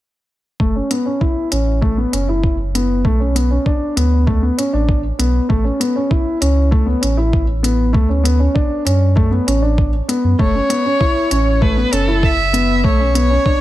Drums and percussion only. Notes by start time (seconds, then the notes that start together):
0.60 kick
0.91 closed hi-hat
1.21 kick
1.52 closed hi-hat
1.82 kick
2.13 closed hi-hat
2.44 kick
2.75 closed hi-hat
3.05 kick
3.36 closed hi-hat
3.66 kick
3.97 closed hi-hat
4.27 kick
4.59 closed hi-hat
4.89 kick
5.20 closed hi-hat
5.50 kick
5.81 closed hi-hat
6.11 kick
6.42 closed hi-hat
6.72 kick
7.03 closed hi-hat
7.33 kick
7.64 closed hi-hat
7.94 kick
8.25 closed hi-hat
8.56 kick
8.87 closed hi-hat
9.17 kick
9.48 closed hi-hat
9.78 kick
10.09 closed hi-hat
10.39 kick
10.70 closed hi-hat
11.01 kick
11.31 closed hi-hat
11.62 kick
11.93 closed hi-hat
12.23 kick
12.54 closed hi-hat
12.84 kick
13.15 closed hi-hat
13.46 kick